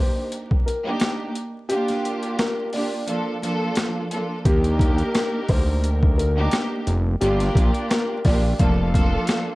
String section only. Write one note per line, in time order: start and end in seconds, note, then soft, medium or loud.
0.00 0.68 A#3 loud
0.00 0.69 D4 medium
0.00 0.69 D#4 medium
0.00 0.69 G4 loud
0.85 1.31 A#3 loud
0.85 1.31 D4 medium
0.85 1.31 D#4 medium
0.85 1.31 G4 loud
1.70 2.66 A#3 medium
1.70 2.66 D4 medium
1.70 2.66 F4 medium
1.70 2.66 G4 loud
2.73 3.05 A#3 medium
2.73 3.05 D4 medium
2.73 3.06 F4 medium
2.73 3.08 G4 loud
3.06 3.39 F3 loud
3.06 3.39 A#3 medium
3.06 3.39 D4 medium
3.06 3.39 F4 medium
3.06 3.39 A4 loud
3.42 4.06 F3 loud
3.42 4.06 A#3 medium
3.42 4.06 D4 medium
3.42 4.06 F4 medium
3.42 4.07 A4 loud
4.11 4.43 F3 medium
4.11 4.43 A#3 medium
4.11 4.43 D4 medium
4.11 4.43 F4 medium
4.11 4.44 A4 medium
4.46 6.20 A#3 loud
4.46 6.20 D4 medium
4.46 6.20 D#4 medium
4.46 6.20 G4 loud
6.37 6.83 A#3 loud
6.37 6.83 D4 medium
6.37 6.83 D#4 medium
6.37 6.83 G4 loud
7.22 8.18 A#3 medium
7.22 8.18 D4 medium
7.22 8.18 F4 medium
7.22 8.18 G4 loud
8.25 8.57 A#3 loud
8.25 8.57 D4 medium
8.25 8.58 F4 medium
8.25 8.60 G4 loud
8.58 8.91 F3 loud
8.58 8.91 A#3 medium
8.58 8.91 D4 medium
8.58 8.91 F4 medium
8.58 8.91 A4 loud
8.94 9.55 F3 loud
8.94 9.55 A#3 medium
8.94 9.55 D4 medium
8.94 9.55 F4 loud
8.94 9.55 A4 loud